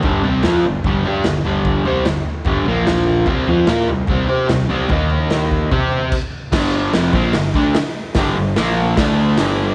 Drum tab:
CC |--------|--------|--------|------x-|
HH |--------|--------|--------|--------|
SD |--o---o-|--o---o-|--o---o-|--o-----|
FT |oooooooo|oooooooo|oooooooo|oooooo--|
BD |o---o---|o---o---|o---o---|o--oo-o-|

CC |x-------|--------|
HH |--o-o-o-|o-o-o-o-|
SD |o-o-o-o-|o-o-o-o-|
FT |--------|--------|
BD |o--o-o--|o---o---|